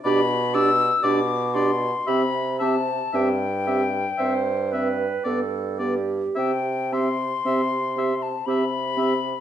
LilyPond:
<<
  \new Staff \with { instrumentName = "Flute" } { \time 3/4 \key c \major \tempo 4 = 57 b''8 e'''8 d'''8 c'''8 b''8 a''8 | g''2 r4 | g''8 c'''4~ c'''16 a''16 b''4 | }
  \new Staff \with { instrumentName = "Oboe" } { \time 3/4 \key c \major d''8 d''8 d''8 d''8 e''8 e''8 | e''8 e''8 e''8 e''8 d''8 d''8 | e''8 e''8 e''8 e''8 e''8 e''8 | }
  \new Staff \with { instrumentName = "Clarinet" } { \time 3/4 \key c \major g'8 g'8 g'8 g'8 g'8 g'8 | g'8 g'8 c''8 b'8 a'8 g'8 | g'8 g'8 g'8 g'8 g'8 g'8 | }
  \new Staff \with { instrumentName = "French horn" } { \time 3/4 \key c \major d'8 d'8 d'8 d'8 c'8 c'8 | c'8 c'8 c'8 c'8 b8 b8 | c'8 c'8 c'8 c'8 c'8 c'8 | }
  \new Staff \with { instrumentName = "Bassoon" } { \clef bass \time 3/4 \key c \major b,4 b,4 c4 | g,4 g,4 g,4 | c4 c4 c4 | }
>>